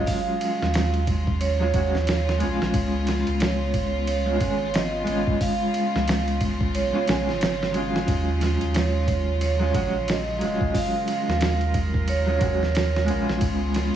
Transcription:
Already playing: string section C#3 F#3 G#3 F4, clean electric guitar F#3 G#3 C#4 F4, vibraphone D#5
0.06 vibraphone F5, kick, open hi-hat
0.41 ride
0.62 sub bass D#2, snare
0.74 snare, ride
0.94 ride
1.07 kick, ride
1.27 kick
1.41 vibraphone C#5, ride
1.59 clean electric guitar F#3 G#3 C#4 F4
1.73 sub bass D#2, clean electric guitar F#3 G#3 C#4 F#4, kick, ride
1.95 snare
2.07 snare, ride
2.29 snare
2.38 sub bass A#1, clean electric guitar G#3 B3, ride
2.42 clean electric guitar C#4 F4
2.61 sub bass A#1, snare
2.73 sub bass C#2, string section B3, kick, ride
3.07 snare, ride
3.27 sub bass C#2, ride
3.40 vibraphone C#5, snare, ride
3.74 kick, ride
4.07 vibraphone C#5, ride
4.26 clean electric guitar G#3 B3 C#4 F4
4.39 sub bass G#1, clean electric guitar G#3 B3 C#4 G#4, kick, ride
4.74 vibraphone D#5, snare, ride
5.04 sub bass G#1, clean electric guitar G#3 B3, ride
5.08 clean electric guitar C#4 F4
5.27 sub bass B1, kick
5.41 vibraphone F5, kick, open hi-hat
5.74 ride
5.95 sub bass C#2, snare
6.08 snare, ride
6.28 ride
6.41 kick, ride
6.61 kick
6.75 sub bass B1, vibraphone C#5, ride
6.92 clean electric guitar G#3 B3 C#4 F4
7.05 sub bass B1, clean electric guitar G#3 B3 C#4 G#4, snare, ride
7.28 sub bass G#1, snare
7.41 snare, ride
7.63 snare
7.71 clean electric guitar F#3 G#3 C#4, ride
7.77 clean electric guitar F4
7.96 snare
8.07 sub bass D#2, string section F#3 G#3, kick, ride
8.41 snare, ride
8.61 sub bass D#2, ride
8.74 vibraphone C#5, snare, ride
9.08 kick, ride
9.41 vibraphone C#5, ride
9.59 clean electric guitar F#3 G#3 C#4 F4
9.73 sub bass A#1, clean electric guitar F#3 G#3 C#4 F#4, kick, ride
10.08 vibraphone D#5, snare, ride
10.39 sub bass D#1, clean electric guitar F#3 G#3 C#4, ride
10.45 clean electric guitar F4
10.61 sub bass C#2, kick
10.74 string section A#4, vibraphone F5, kick, open hi-hat
11.08 ride
11.28 sub bass D#2, snare
11.41 snare, ride
11.61 ride
11.74 kick, ride
11.94 kick
12.08 vibraphone C#5, ride
12.26 clean electric guitar F#3 G#3 C#4 F4
12.39 sub bass D#2, clean electric guitar F#3 G#3 C#4 F#4, kick, ride
12.63 snare
12.75 snare, ride
12.96 snare
13.04 clean electric guitar G#3 B3, ride
13.09 sub bass A#1, clean electric guitar C#4 F4
13.29 sub bass A#1, snare
13.41 sub bass C#2, string section C#3 B3 F4, kick, ride
13.74 snare, ride

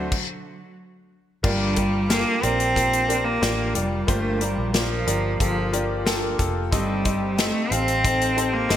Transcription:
Already playing: grand piano D3 A3 D4 F#4 A4 C5 D5, steel-string acoustic guitar D3 A3 C4 F#4 A4, cello F#3, string section C6
0.12 kick, crash
1.43 fingered electric bass G1, steel-string acoustic guitar G2 D3 F3 A#3 D4 A#4, grand piano G2 A#3 F4 G4 D5, cello G3, kick, crash
1.76 steel-string acoustic guitar F3 A#3 D4 A#4, grand piano A#3 F4 G4 D5, kick, closed hi-hat
2.09 steel-string acoustic guitar F3 A#3 D4 A#4, grand piano A#3 F4 G4 A4, cello A#3, snare, closed hi-hat
2.42 fingered electric bass A#1, steel-string acoustic guitar F3 A#3 D4 A#4, grand piano A#3 F4 G4 D5, cello C4, closed hi-hat
2.60 closed hi-hat
2.75 grand piano A#3 F4 G4 A#4, kick, closed hi-hat
2.93 closed hi-hat
3.08 steel-string acoustic guitar F3 A#3 D4 A#4, grand piano A#3 F4 G4 D5, closed hi-hat
3.25 cello A#3
3.41 fingered electric bass A1, steel-string acoustic guitar F3 A#3 D4 A#4, grand piano A#3 F4 G4 D5, snare, closed hi-hat
3.74 fingered electric bass F1, cello G3, grand piano A#3 F4 G4 D5, closed hi-hat
4.07 fingered electric bass G1, steel-string acoustic guitar G2 D3 F3 A#3 D4 A#4, grand piano G2 A#3 F4 G4 C5, cello A3, kick, closed hi-hat
4.40 steel-string acoustic guitar F3 A#3 D4 A#4, cello G3, grand piano A#3 F4 G4 D5, closed hi-hat
4.58 fingered electric bass A#1
4.73 steel-string acoustic guitar F3 A#3 D4 A#4, cello F3, grand piano A#3 F4 G4 D5, snare, closed hi-hat
5.06 fingered electric bass G1, steel-string acoustic guitar F3 A#3 D4 A#4, grand piano A#3 F4 G4 D5, closed hi-hat
5.39 fingered electric bass G1, cello F3, grand piano A#3 F4 G4 A4, kick, closed hi-hat
5.72 steel-string acoustic guitar F3 A#3 D4 A#4, grand piano A#3 F4 G4 D5, closed hi-hat
6.05 steel-string acoustic guitar F3 A#3 D4 A#4, grand piano A#3 F4 G4 A4, snare, closed hi-hat
6.38 fingered electric bass F1, grand piano A#3 F4 G4 A4, kick, closed hi-hat
6.71 fingered electric bass G1, steel-string acoustic guitar G2 D#3 A3 C4 D#4 G4, grand piano G2 C4 D#4 A4 D#5, cello G3, kick, closed hi-hat
7.04 steel-string acoustic guitar A3 C4 D#4 G4, grand piano C4 D#4 A4 D#5, kick, closed hi-hat
7.37 steel-string acoustic guitar A3 C4 D#4 G4, cello A3, grand piano C4 D#4 A4 D#5, snare, closed hi-hat
7.70 fingered electric bass A1, steel-string acoustic guitar A3 C4 D#4 G4, grand piano C4 D#4 A4 F5, cello C4, closed hi-hat
7.88 closed hi-hat
8.04 grand piano C4 D#4 A4 C5, kick, closed hi-hat
8.22 closed hi-hat
8.36 steel-string acoustic guitar A3 C4 D#4 G4, grand piano C4 D#4 A4 C5, closed hi-hat
8.53 cello A#3
8.69 fingered electric bass G1, steel-string acoustic guitar A3 C4 D#4 G4, grand piano C4 D#4 A4 D#5, snare, closed hi-hat

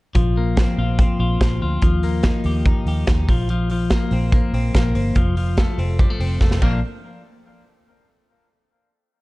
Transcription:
0.15 fingered electric bass A#1, clean electric guitar F3, kick, closed hi-hat
0.37 clean electric guitar A#3
0.57 clean electric guitar C4, kick, snare, closed hi-hat
0.78 fingered electric bass A#1, clean electric guitar F4
0.99 clean electric guitar C4, kick, closed hi-hat
1.19 fingered electric bass A#1, clean electric guitar F4
1.40 fingered electric bass A#1, clean electric guitar C4, kick, snare, closed hi-hat
1.62 fingered electric bass D2, clean electric guitar F4
1.82 fingered electric bass D#2, clean electric guitar F3, kick, closed hi-hat
2.03 clean electric guitar A#3, open hi-hat
2.23 clean electric guitar D#4, kick, snare, closed hi-hat
2.44 fingered electric bass D#2, clean electric guitar G4, open hi-hat
2.66 clean electric guitar D#4, kick, closed hi-hat
2.86 fingered electric bass D#2, clean electric guitar G4, open hi-hat
3.07 fingered electric bass D#2, clean electric guitar D#4, kick, snare, closed hi-hat
3.29 fingered electric bass A#1, clean electric guitar F3, kick, open hi-hat
3.49 clean electric guitar F3, closed hi-hat
3.70 clean electric guitar F3, open hi-hat
3.90 clean electric guitar A#3, kick, snare, closed hi-hat
4.11 fingered electric bass A#1, clean electric guitar C4, open hi-hat
4.32 clean electric guitar A#3, kick, closed hi-hat
4.53 fingered electric bass A#1, clean electric guitar C4, open hi-hat
4.74 fingered electric bass A#1, clean electric guitar A#3, kick, snare, closed hi-hat
4.95 fingered electric bass G1, clean electric guitar C4, open hi-hat
5.15 fingered electric bass F1, clean electric guitar F3, kick, closed hi-hat
5.37 clean electric guitar F3, open hi-hat
5.57 clean electric guitar A3, kick, snare, closed hi-hat
5.78 fingered electric bass F1, clean electric guitar C4, open hi-hat
5.99 clean electric guitar G3, kick, closed hi-hat
6.10 clean electric guitar A3
6.19 fingered electric bass F1, clean electric guitar C4, open hi-hat
6.41 fingered electric bass F1, clean electric guitar A3, kick, snare
6.51 snare
6.62 fingered electric bass A#1, clean electric guitar F3 A#3 D4, kick, crash

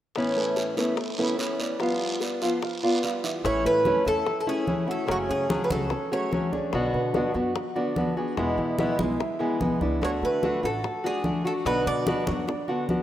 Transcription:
0.15 steel-string acoustic guitar A2 E3 B3 C#4 E4, high bongo, long guiro
0.36 grand piano A3 A4 B4, high bongo
0.56 high bongo, short guiro
0.77 steel-string acoustic guitar E3 B3 C#4 E4, grand piano A3 A4 B4, high bongo, short guiro
0.97 muted steel-string acoustic guitar stroke, high bongo, long guiro
1.18 steel-string acoustic guitar E3 B3 C#4 E4, grand piano A3 A4 B4
1.38 steel-string acoustic guitar E3 B3 C#4 E4, high bongo, low bongo, short guiro
1.59 grand piano B3 B4 D5, high bongo, short guiro
1.79 grand piano F3 F4 F5, steel-string acoustic guitar G3 B3 F4, high bongo, long guiro
2.00 high bongo
2.21 grand piano B3 B4 D5, high bongo, short guiro
2.42 grand piano F3 F4 F5, steel-string acoustic guitar B3 F4, high bongo, short guiro
2.62 muted steel-string acoustic guitar stroke, high bongo, long guiro
2.83 grand piano B3 B4 D5, steel-string acoustic guitar B3 F4
3.03 steel-string acoustic guitar G3 B3 F4, high bongo, low bongo, short guiro
3.24 grand piano E3 E4 E5, high bongo, short guiro
3.44 upright bass A1, steel-string acoustic guitar E3 A3 C#4 E4, cuban tres C#5, high bongo, high conga
3.64 upright bass A2, grand piano A3 A4, cuban tres B4, high bongo, high conga
3.85 steel-string acoustic guitar E3 A3 C#4 E4, high bongo, high conga
4.05 upright bass E2, steel-string acoustic guitar A3 C#4 E4, grand piano E4 E5, cuban tres A4, high bongo, high conga
4.26 muted steel-string acoustic guitar stroke, high bongo, high conga
4.40 cuban tres A4
4.47 steel-string acoustic guitar A3 C#4 E4, grand piano C#4 C#5, cuban tres G#4, high conga
4.67 steel-string acoustic guitar E3 A3 C#4 E4, high bongo, low bongo, high conga
4.86 steel-string acoustic guitar A3 C#4 E4, grand piano F#4 F#5, high bongo, high conga
4.91 cuban tres A4
5.07 upright bass F#1, steel-string acoustic guitar C#3 F#3 A3 C#4 G#4, grand piano F#3 F#4, high bongo, high conga
5.11 cuban tres F#4
5.29 upright bass F#2, grand piano C#4 C#5, cuban tres G#4, high bongo, high conga
5.49 steel-string acoustic guitar C#3 F#3 A3 C#4 G#4, high bongo, high conga
5.64 cuban tres B4
5.70 upright bass C#2, grand piano F#3 F#4, steel-string acoustic guitar A3 C#4 G#4, cuban tres A4, high bongo, high conga
5.90 grand piano C#4 C#5, muted steel-string acoustic guitar stroke, high bongo, high conga
6.12 steel-string acoustic guitar F#3 A3 C#4 G#4, grand piano F#4 F#5, cuban tres C#5, high conga
6.32 steel-string acoustic guitar F#3 A3 C#4 G#4, high bongo, low bongo, high conga
6.52 steel-string acoustic guitar A3 C#4 G#4, grand piano D4 D5, high bongo, high conga
6.73 upright bass B1, steel-string acoustic guitar B2 D3 B3 D4 F#4, high bongo, high conga
6.93 upright bass B2, grand piano B3 B4, high bongo, high conga
7.14 steel-string acoustic guitar B2 D3 B3 D4 F#4, high bongo, high conga
7.34 upright bass F#2, steel-string acoustic guitar B3 D4 F#4, grand piano F#4 F#5, high bongo, high conga
7.55 muted steel-string acoustic guitar stroke, high bongo, high conga
7.76 steel-string acoustic guitar D3 B3 D4 F#4, grand piano D4 D5, high conga
7.96 steel-string acoustic guitar D3 B3 D4 F#4, high bongo, low bongo, high conga
8.17 steel-string acoustic guitar B3 D4 F#4, grand piano G#4 G#5, high bongo, high conga
8.37 upright bass E2, steel-string acoustic guitar B2 E3 G#3 B3 E4, grand piano G#3 G#4, high bongo, high conga
8.57 upright bass E3, grand piano E4 E5, high bongo, high conga
8.78 steel-string acoustic guitar B2 E3 G#3 B3 E4, high bongo, high conga
8.99 upright bass B1, grand piano G#3 G#4, steel-string acoustic guitar G#3 B3 E4, high bongo, high conga
9.19 grand piano E4 E5, muted steel-string acoustic guitar stroke, high bongo, high conga
9.39 steel-string acoustic guitar E3 G#3 B3 E4, grand piano G#4 G#5, high conga
9.60 upright bass B1, steel-string acoustic guitar E3 G#3 B3 E4, high bongo, low bongo, high conga
9.81 upright bass C#2, steel-string acoustic guitar G#3 B3 E4, grand piano D4 D5, high bongo, high conga
10.01 upright bass D2, steel-string acoustic guitar D3 A3 D4 F#4, cuban tres C#5, high bongo, high conga
10.22 upright bass D3, grand piano A3 A4, cuban tres B4, high bongo, high conga
10.43 steel-string acoustic guitar D3 A3 D4 F#4, high bongo, high conga
10.63 upright bass A1, steel-string acoustic guitar A3 D4 F#4, grand piano F#4 F#5, cuban tres A4, high bongo, high conga
10.84 muted steel-string acoustic guitar stroke, high bongo, high conga
11.04 steel-string acoustic guitar A3 D4 F#4, grand piano D4 D5, cuban tres G#4, high conga
11.24 steel-string acoustic guitar D3 A3 D4 F#4, high bongo, low bongo, high conga
11.44 steel-string acoustic guitar A3 D4 F#4, grand piano F#4 F#5, cuban tres A4, high bongo, high conga
11.65 upright bass B1, steel-string acoustic guitar B2 D3 B3 D4 F#4, grand piano F#3 F#4, cuban tres B4, high bongo, high conga
11.86 upright bass B2, grand piano D4 D5, cuban tres D5, high bongo, high conga
12.06 steel-string acoustic guitar B2 D3 B3 D4 F#4, high bongo, high conga
12.27 upright bass F#2, grand piano F#3 F#4, steel-string acoustic guitar B3 D4 F#4, high bongo, high conga
12.47 grand piano D4 D5, muted steel-string acoustic guitar stroke, high bongo, high conga
12.68 steel-string acoustic guitar D3 B3 D4 F#4, grand piano F#4 F#5, high conga
12.89 steel-string acoustic guitar D3 B3 D4 F#4, high bongo, low bongo, high conga

